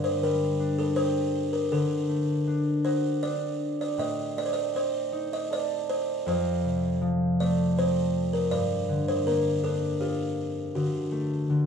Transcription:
Already playing: harp G2 D3 G4
0.04 kalimba C5
0.23 harp G3, kalimba A#4
0.60 harp D4
0.79 kalimba A4
0.96 harp G4, kalimba C5
1.53 kalimba A#4
1.72 harp D3, kalimba A4
2.09 harp A3
2.47 harp D4
2.85 harp F#4, kalimba C5
3.23 harp D4, kalimba D5
3.81 kalimba D5
3.98 harp A2, kalimba D#5
4.37 harp A3, kalimba D5
4.46 kalimba C5
4.53 kalimba D5
4.75 harp C4, kalimba C5
5.12 harp D#4
5.33 kalimba D#5
5.50 harp A4, kalimba D5
5.90 kalimba C5
6.26 harp F2, kalimba C5
6.64 harp C3
7.01 harp F3
7.40 harp A3, kalimba D5
7.78 harp C4, kalimba C5
8.33 kalimba A#4
8.51 harp G2, kalimba D5
8.89 harp D3
9.08 kalimba C5
9.26 harp A#3, kalimba A#4
9.63 harp D4, kalimba A4
10.00 harp F4, kalimba G4
10.75 harp D3, kalimba F#4
11.12 harp A3
11.50 harp D3

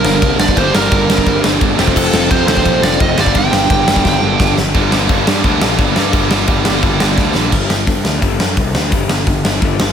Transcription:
Already playing: distorted electric guitar G2 D3 G3, overdriven electric guitar G2 D3 G3 A#3 D4, lead electric guitar A#4
0.04 picked electric bass G1, snare
0.22 picked electric bass C2, kick, ride
0.39 picked electric bass G1, lead electric guitar D5, snare
0.48 kick
0.56 picked electric bass G1, overdriven electric guitar G2 D3 G3 A#3 D4, lead electric guitar C5, kick, ride
0.75 picked electric bass G1, lead electric guitar A#4, snare
0.92 picked electric bass G1, kick, ride
1.08 picked electric bass G1, overdriven electric guitar G2 D3 G3 A#3 D4, snare
1.18 kick
1.26 picked electric bass G1, kick, ride
1.44 picked electric bass G1, snare
1.61 picked electric bass G1, kick, ride
1.76 picked electric bass F1, overdriven electric guitar F2 C3 F3 A3 C4, snare
1.87 kick
1.96 picked electric bass F1, lead electric guitar A4, kick, crash
2.13 picked electric bass F1, snare
2.29 overdriven electric guitar F2 C3 F3 A3 C4, picked electric bass F2, lead electric guitar C5, kick, ride
2.47 picked electric bass D#2, lead electric guitar C5, snare
2.57 kick
2.65 picked electric bass A#1, kick, ride
2.82 picked electric bass F1, lead electric guitar D5, snare
3.00 picked electric bass F1, lead electric guitar D#5, kick, ride
3.16 picked electric bass G1, overdriven electric guitar G2 D3 G3 A#3 D4, snare
3.20 lead electric guitar D5
3.26 kick
3.35 picked electric bass G1, lead electric guitar G5, kick, ride
3.52 picked electric bass G1, snare
3.69 picked electric bass G1, overdriven electric guitar G2 D3 G3 A#3 D4, kick, ride
3.87 picked electric bass G1, snare
3.96 kick
4.05 picked electric bass G1, kick, snare
4.23 picked electric bass G1
4.40 picked electric bass G1, kick, snare
4.58 picked electric bass G1, snare
4.74 picked electric bass G1, overdriven electric guitar G2 D3 G3 A#3 D4, kick, crash
4.91 picked electric bass G1, overdriven electric guitar G2 D3 G3 A#3 D4, snare
5.08 picked electric bass G1, overdriven electric guitar G2 D3 G3 A#3 D4, kick, crash
5.26 overdriven electric guitar G2 D3 G3 A#3 D4, picked electric bass G2, snare
5.43 picked electric bass D2, overdriven electric guitar G2 D3 G3 A#3 D4, kick, crash
5.61 picked electric bass A#1, overdriven electric guitar G2 D3 G3 A#3 D4, snare
5.77 picked electric bass G1, overdriven electric guitar G2 D3 G3 A#3 D4, kick, crash
5.95 overdriven electric guitar G2 D3 G3 A#3 D4, picked electric bass G2, snare
6.12 picked electric bass G1, overdriven electric guitar G2 D3 G3 A#3 D4, kick, crash
6.29 overdriven electric guitar G2 D3 G3 A#3 D4, snare
6.46 picked electric bass G1, overdriven electric guitar G2 D3 G3 A#3 D4, kick, crash
6.64 picked electric bass G1, overdriven electric guitar G2 D3 G3 A#3 D4, snare
6.82 picked electric bass G1, overdriven electric guitar G2 D3 G3 A#3 D4, kick, crash
6.99 picked electric bass G1, overdriven electric guitar G2 D3 G3 A#3 D4, snare
7.16 picked electric bass D2, overdriven electric guitar G2 D3 G3 A#3 D4, kick, snare
7.33 picked electric bass A#1, overdriven electric guitar G2 D3 G3 A#3 D4, snare
7.51 picked electric bass G1, overdriven electric guitar G2 D3 G3, kick, crash
7.68 picked electric bass G1, overdriven electric guitar G2 D3, snare
7.85 overdriven electric guitar G2 D3, picked electric bass G2, kick, open hi-hat
8.03 picked electric bass D2, overdriven electric guitar G2 D3, snare
8.20 picked electric bass G1, overdriven electric guitar G2 D3 G3, kick, open hi-hat
8.39 picked electric bass F#2, overdriven electric guitar G2 D3, snare
8.56 picked electric bass C2, overdriven electric guitar G2 D3, kick, open hi-hat
8.73 picked electric bass D2, overdriven electric guitar G2 D3, snare
8.90 picked electric bass G1, overdriven electric guitar G2 D3 G3, kick, open hi-hat
9.08 picked electric bass G1, overdriven electric guitar G2 D3, snare
9.25 picked electric bass G1, overdriven electric guitar G2 D3, kick, open hi-hat
9.43 picked electric bass G1, overdriven electric guitar G2 D3, snare
9.60 picked electric bass G1, overdriven electric guitar G2 D3 G3, kick, open hi-hat
9.78 picked electric bass G1, overdriven electric guitar G2 D3, snare

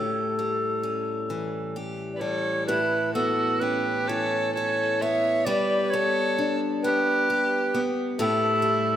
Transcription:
Already playing: steel-string acoustic guitar A2 A3 C#4 G4, flute A4
0.39 steel-string acoustic guitar G3
0.83 steel-string acoustic guitar C#4
1.30 steel-string acoustic guitar E3
1.76 steel-string acoustic guitar G4
2.14 fiddle B4, flute D5
2.19 steel-string acoustic guitar G3, fiddle A4, flute C#5
2.67 steel-string acoustic guitar A2 E4, fiddle E4, flute B4
3.14 steel-string acoustic guitar B3, fiddle F#4, flute A4
3.60 steel-string acoustic guitar C#4, fiddle G4, flute B4
4.07 steel-string acoustic guitar E3, fiddle A4, flute C#5
4.54 steel-string acoustic guitar E4, fiddle A4, flute C#5
5.01 steel-string acoustic guitar B3, fiddle C#5, flute E5
5.45 steel-string acoustic guitar G3 G4, fiddle B4, flute D5
5.90 steel-string acoustic guitar B3, flute C#5
5.94 fiddle A4
6.38 steel-string acoustic guitar D4
6.82 steel-string acoustic guitar B3, fiddle G4, flute B4
7.30 steel-string acoustic guitar G4
7.74 steel-string acoustic guitar B3
8.18 steel-string acoustic guitar A2 G4, fiddle E4, flute A4
8.62 steel-string acoustic guitar G3

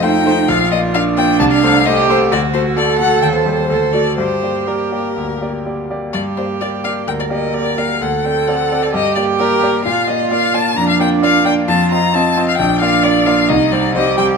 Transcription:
Already playing: grand piano F2 A3 F4 C5
0.03 grand piano A3 F4 C5, cello D#4, violin G5
0.26 grand piano A3 F4 C5
0.48 grand piano A#1, cello F4, violin F5
0.71 grand piano A#3 F4 D5, violin D#5
0.94 grand piano A#3 F4 D5, cello D4, violin F5
1.17 grand piano A#3 F4 D5, violin G5
1.40 grand piano C2, violin A5
1.51 violin F5
1.63 grand piano A3 A4 C5
1.86 grand piano A3 A4 C5, cello G4, violin D#5
2.09 grand piano A3 A4 C5, violin C5
2.31 grand piano D2, cello F#4, violin D5
2.54 grand piano A3 F#4 A4, violin C5
2.76 grand piano A3 F#4 A4, cello A4, violin D5
2.99 grand piano A3 F#4 A4, violin F#5
3.22 grand piano D#2, violin G5
3.33 violin C5
3.46 grand piano G3 G4 C5
3.69 grand piano D2, cello A4
3.93 grand piano A3 F#4 D5, violin D5
4.17 grand piano G2, cello G4, violin C5
4.42 grand piano A#3 G4 D5
4.67 grand piano A#3 G4 D5, violin A#4
4.92 grand piano A#3 G4 D5
5.17 grand piano D2
5.41 grand piano A#3 G4 D5
5.66 grand piano A#3 G4 D5
5.90 grand piano A#3 G4 D5
6.13 grand piano G2, cello G4, violin D5
6.37 grand piano A#3 G4 D5, violin C5
6.61 grand piano A#3 G4 D5, violin D5
6.84 grand piano A#3 G4 D5, violin F5
7.07 grand piano D2, cello A#4, violin G5
7.20 violin D5
7.30 grand piano A#3 G4 D5, violin D#5
7.54 grand piano A#3 G4 D5, violin D5
7.78 grand piano A#3 G4 D5, violin F5
8.01 grand piano D2, cello A4, violin F#5
8.24 grand piano C4 A4 D5, violin G5
8.47 grand piano C4 A4 D5, violin F#5
8.71 grand piano C4 A4 D5
8.83 violin D5
8.93 grand piano G2, cello G4, violin D#5
9.15 grand piano A#3 G4 D5, violin D5
9.39 grand piano A#3 G4 D5, violin A#4
9.63 grand piano A#3 G4 D5
9.85 grand piano A#2, cello F4, violin F5
10.07 grand piano A#3 F4 D5, violin D#5
10.31 grand piano A#3 F4 D5, violin F5
10.54 grand piano A#3 F4 D5, violin A5
10.77 grand piano F2, cello D4, violin A#5
10.89 violin F5
11.00 grand piano A#3 F4 D5, violin G5
11.22 grand piano A#3 F4 D5, violin F5
11.45 grand piano A#3 F4 D5, violin G5
11.68 grand piano F2, cello F4, violin A5
11.91 grand piano C4 F4 D#5, violin A#5
12.13 cello C4, grand piano C4 F4 D#5, violin A5
12.37 grand piano C4 F4 D#5
12.48 violin F5
12.58 grand piano A#1, cello D4, violin G5
12.80 grand piano A#3 F4 D5, violin F5
13.03 grand piano A#3 F4 D5, violin D5
13.26 grand piano A#3 F4 D5, violin F5
13.49 grand piano C2, cello D#4, violin D#5
13.72 grand piano G3 C4 C5, violin D5
13.94 grand piano G3 C4 C5, cello G4, violin D#5
14.17 grand piano G3 C4 C5, violin G5

